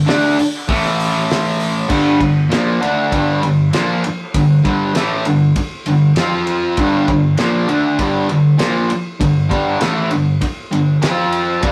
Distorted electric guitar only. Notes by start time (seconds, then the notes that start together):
0.06 D3 A3 D4
0.38 muted distorted electric guitar stroke
0.68 A2 E3 A3
1.88 G2 D3 G3
2.20 G2 D3
2.49 A#2 F3 A#3
2.80 D3 A3 D4
3.11 G2 D3 G3
3.42 G2 D3
3.74 A#2 F3 A#3
4.05 muted distorted electric guitar stroke
4.35 G2 D3
4.64 G2 D3 G3
4.94 A2 E3 A3
5.26 G2 D3
5.56 muted distorted electric guitar stroke
5.87 G2 D3
6.18 F3 C4 F4
6.79 G2 D3 G3
7.09 G2 D3
7.38 A#2 F3 A#3
7.68 D3 A3 D4
7.99 G2 D3 G3
8.29 G2 D3
8.58 A#2 F3 A#3
8.88 muted distorted electric guitar stroke
9.20 G2 D3
9.49 G2 D3 G3
9.80 A2 E3 A3
10.11 G2 D3
10.41 muted distorted electric guitar stroke
10.71 G2 D3
11.01 F3 C4 F4
11.62 G2 D3 G3